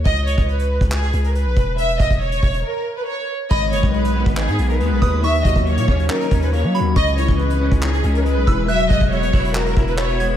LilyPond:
<<
  \new Staff \with { instrumentName = "Synth bell" } { \time 4/4 \key gis \minor \tempo 4 = 139 r1 | r1 | b''2 r4. dis'''8 | cis'''2 r4. b''8 |
cis'''2 r4. e'''8 | fis'''2.~ fis'''8 gis'''8 | }
  \new Staff \with { instrumentName = "Violin section" } { \time 4/4 \key gis \minor dis''8 cis''8 b'4 gis'8. ais'16 b'4 | e''8 dis''8 cis''4 ais'8. b'16 cis''8 r8 | dis''8 cis''8 b'4 gis'8. ais'16 b'4 | e''8 dis''8 cis''4 ais'8. b'16 cis''8 r8 |
dis''8 cis''8 b'4 gis'8. ais'16 b'4 | e''8 dis''8 cis''4 ais'8. b'16 cis''8 r8 | }
  \new Staff \with { instrumentName = "Clean electric guitar" } { \time 4/4 \key gis \minor r1 | r1 | gis,8 dis8 gis8 b8 dis'8 b8 gis8 dis8 | dis8 fis8 ais8 cis'8 dis'8 cis'8 ais8 fis8 |
cis8 e8 gis8 cis'8 dis'8 cis'8 gis8 e8 | fis8 gis8 b8 e'8 fis'8 e'8 b8 gis8 | }
  \new Staff \with { instrumentName = "808-style bass" } { \clef bass \time 4/4 \key gis \minor cis,8. cis,4 cis,8. cis,8. b,,16 e,,8~ | e,,8 e,,16 e,,8. e,,8 r2 | gis,,8 fis,,16 b,,4 gis,,8 gis,16 b,,8 dis,16 b,,16 dis,8~ | dis,8 dis,16 dis,8 ais,16 dis,8 r8 dis,8. fis16. dis,16. |
cis,8. cis,4 cis,8. cis,8. b,,16 e,,8~ | e,,8 e,,16 e,,8. e,,4 e,,4. | }
  \new DrumStaff \with { instrumentName = "Drums" } \drummode { \time 4/4 <hh bd>16 hh16 hh16 <hh bd>16 hh16 hh8 <hh bd>16 <hc hh>16 hh16 hh16 hh16 hh8 <hh bd>8 | hh16 hh16 <hh bd>16 <hh bd>16 hh16 hh16 <hho bd>16 hh16 r4 r4 | <cymc bd>16 hh16 hh16 bd16 hh16 hh8 <hh bd>16 <hc hh>16 hh16 hh16 hh16 hh8 <hh bd>8 | hh16 hh16 <hh bd>16 <hh bd>16 hh16 hh16 bd16 hh16 <hc hh>16 hh16 <hh bd>16 hh16 hh8 hh8 |
<hh bd>16 hh16 hh16 <hh bd>16 hh16 hh8 <hh bd>16 hc16 hh16 hh16 hh16 hh8 <hh bd>8 | hh16 hh16 <hh bd>16 <hh bd>16 hh16 hh16 <hho bd>16 hh16 hc16 hh16 <hh bd>16 hh16 <hc hh>16 hh16 hh8 | }
>>